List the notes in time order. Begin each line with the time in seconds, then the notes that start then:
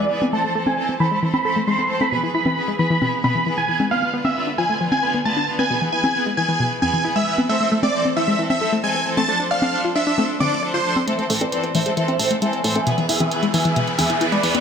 Already playing: downlifter
0.00 D5
0.11 E3 B3 G#4 B4
0.22 B3, high conga
0.33 E3 A3 C4 A4 C5 A5
0.44 E3 A3 C4 A4 C5
0.55 E3 A3 C4 A4 C5
0.67 A3 G#5, high conga
0.78 E3 C4 A4 C5
0.89 C4
1.00 E3 C4 A4 C5 B5
1.11 E3 G#3 C4 A4 C5
1.22 E3 C4 A4 C5
1.34 B5, high conga
1.45 E3 C4 A4 C5
1.56 A3
1.67 E3 G#3 C4 A4 C5 C6
1.79 C4
1.90 E3 C4 A4 C5
2.01 A3 B5, high conga
2.12 B2 E3 B3 G#4 B4
2.23 E3 B3 G#4 B4
2.34 E3 B3 E4 G#4 B4 B5
2.46 E3, high conga
2.57 E3 B3 G#4 B4
2.68 G#3
2.79 E3 B3 G#4 B4 B5
2.90 E3 B3 G#4 B4
3.02 B2 E3 B3 G#4 B4, high conga
3.24 B2 E3 B3 G#4 B4 B5, high conga
3.35 E3
3.46 E3 B3 G#4 B4
3.58 E3 G#5
3.69 E3 B3 G#4 B4
3.80 G#3, high conga
3.91 D3 B3 F4 B4 F5
4.02 D3 B3 F4 B4
4.14 D3 B3 F4 B4
4.25 B3 E5, high conga
4.36 D3 B3 F4 B4
4.47 D4
4.58 D3 F3 B3 F4 B4 G#5
4.69 D3 A3 B3 F4 B4
4.81 D3 F3 B3 F4 B4
4.92 G#5, high conga
5.03 D3 B3 F4 B4
5.14 B3
5.25 D3 A3 B3 F4 B4 A5
5.37 D4
5.48 D3 B3 F4 B4
5.59 B3 G#5, high conga
5.70 B2 E3 B3 G#4 B4
5.81 E3 B3 G#4 B4
5.92 E3 B3 E4 G#4 B4 G#5
6.04 E3, high conga
6.15 E3 B3 G#4 B4
6.26 G#3
6.37 E3 B3 G#4 B4 G#5
6.49 E3 B3 G#4 B4
6.60 B2 E3 B3 G#4 B4
6.82 E2 E3 B3 G#4 B4 G#5, high conga
6.93 E3
7.05 E3 B3 E4 G#4 B4
7.16 G#3 E5
7.27 E3 B3 G#4 B4
7.38 B3, high conga
7.49 E3 A3 C4 A4 C5 E5
7.61 E3 A3 C4 A4 C5
7.72 E3 A3 C4 A4 C5
7.83 A3 D5, high conga
7.94 E3 C4 A4 C5
8.05 C4
8.16 E3 C4 A4 C5 E5
8.28 E3 G#3 C4 A4 C5
8.39 E3 C4 A4 C5
8.50 E5, high conga
8.61 E3 C4 A4 C5
8.73 A3
8.84 E3 G#3 C4 A4 C5 G#5
8.95 C4
9.06 E3 C4 A4 C5
9.17 A3 A5, high conga
9.28 F3 A3 D4 A4 C5
9.40 F3 D4 A4 C5
9.51 F3 D4 A4 C5 D5 F5
9.62 D4, high conga
9.73 F3 D4 A4 C5
9.84 F4
9.96 F3 D4 A4 C5 E5
10.07 F3 D4 A4 C5
10.18 F3 A3 D4 A4 C5, high conga
10.40 D3 F3 D4 A4 C5 D5, high conga
10.52 D4
10.63 F3 D4 A4 C5 D5
10.74 F4 C5
10.85 F3 D4 A4 C5
10.96 A4, high conga
11.08 E3 A3 C4 A4 C5 E5, closed hi-hat, riser
11.19 E3 A3 C4 A4 C5, closed hi-hat
11.30 A1 E3 A3 C4 A4 C5, open hi-hat
11.41 A3 B4 D5, closed hi-hat, high conga
11.52 E3 C4 A4 C5, closed hi-hat
11.64 C4, closed hi-hat
11.75 A1 E3 C4 A4 C5 E5, open hi-hat
11.86 E3 G#3 C4 A4 C5, closed hi-hat
11.97 E3 C4 A4 C5, closed hi-hat
12.08 C5 E5, closed hi-hat, high conga
12.19 A1 E3 C4 A4 C5, open hi-hat
12.31 A3, closed hi-hat
12.42 E3 G#3 C4 A4 C5 E5 G#5, closed hi-hat
12.53 C4, closed hi-hat
12.64 A2 E3 C4 A4 C5, open hi-hat
12.75 A3 E5 G#5, closed hi-hat, high conga
12.87 B2 E3 B3 G#4 B4, closed hi-hat
12.98 E3 B3 G#4 B4, closed hi-hat
13.09 E1 E3 B3 E4 G#4 B4 E5, open hi-hat
13.20 E3, closed hi-hat, high conga
13.31 E3 B3 G#4 B4, closed hi-hat
13.43 G#3, closed hi-hat
13.54 E1 E3 B3 G#4 B4 E5 G#5, open hi-hat
13.65 E3 B3 G#4 B4, closed hi-hat
13.76 B2 E3 B3 G#4 B4, closed hi-hat
13.87 closed hi-hat
13.98 E1 E2 E3 B3 G#4 B4 E5, open hi-hat, high conga
14.10 E3, closed hi-hat
14.21 E3 B3 E4 G#4 B4, closed hi-hat
14.32 G#3 B4 D5, closed hi-hat
14.43 E2 E3 B3 G#4 B4, open hi-hat
14.55 B3, closed hi-hat, high conga